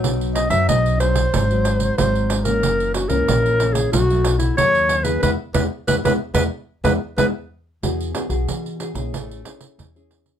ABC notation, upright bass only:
X:1
M:4/4
L:1/16
Q:1/4=92
K:E
V:1 name="Upright bass" clef=bass
B,,,3 F,, B,,,4 G,,,4 G,,,4 | F,,,3 C,, ^A,,,4 B,,,4 D,,4 | E,, z E,, z E,, E,, z E,, z2 E,, z E,, z3 | E,,2 z B,,, E,3 ^A,,, =A,,,2 z2 E,,4 |]